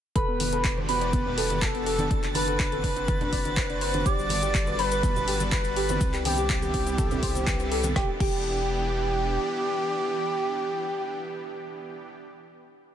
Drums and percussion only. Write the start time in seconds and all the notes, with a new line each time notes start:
0.16 kick, closed hi-hat
0.40 open hi-hat, high conga
0.53 closed hi-hat
0.64 kick, clap, closed hi-hat
0.78 high conga
0.89 open hi-hat
1.01 closed hi-hat
1.13 kick, closed hi-hat, high conga
1.27 low conga
1.38 open hi-hat
1.50 closed hi-hat, high conga
1.62 kick, clap, closed hi-hat
1.75 closed hi-hat
1.86 open hi-hat
1.98 closed hi-hat, high conga
2.11 kick, closed hi-hat
2.23 clap, closed hi-hat
2.35 open hi-hat, high conga
2.48 closed hi-hat
2.60 kick, clap, closed hi-hat
2.72 closed hi-hat, high conga
2.84 kick, open hi-hat
2.96 closed hi-hat
3.08 kick, closed hi-hat, high conga
3.21 closed hi-hat, low conga
3.33 kick, open hi-hat
3.45 closed hi-hat, high conga
3.57 kick, clap, closed hi-hat
3.70 closed hi-hat
3.81 open hi-hat
3.94 closed hi-hat, high conga
4.06 kick, closed hi-hat, cabasa
4.19 cabasa
4.29 open hi-hat, high conga
4.42 closed hi-hat, cabasa
4.55 kick, clap, closed hi-hat, cabasa
4.67 high conga, cabasa
4.79 open hi-hat
4.92 closed hi-hat, cabasa
5.03 kick, closed hi-hat, high conga, cabasa
5.16 low conga, cabasa
5.28 open hi-hat
5.40 closed hi-hat, high conga, cabasa
5.52 kick, clap, closed hi-hat, cabasa
5.64 closed hi-hat, cabasa
5.76 open hi-hat
5.89 closed hi-hat, high conga, cabasa
6.01 kick, closed hi-hat, cabasa
6.14 clap, closed hi-hat, cabasa
6.25 open hi-hat, high conga
6.38 closed hi-hat, cabasa
6.50 kick, clap, closed hi-hat, cabasa
6.62 closed hi-hat, high conga, cabasa
6.74 kick, open hi-hat
6.87 closed hi-hat, cabasa
6.98 kick, closed hi-hat, high conga, cabasa
7.11 closed hi-hat, low conga, cabasa
7.23 kick, open hi-hat
7.35 closed hi-hat, high conga, cabasa
7.47 kick, clap, closed hi-hat, cabasa
7.60 closed hi-hat, cabasa
7.72 open hi-hat
7.83 closed hi-hat, high conga, cabasa
7.96 kick, snare
8.20 kick, crash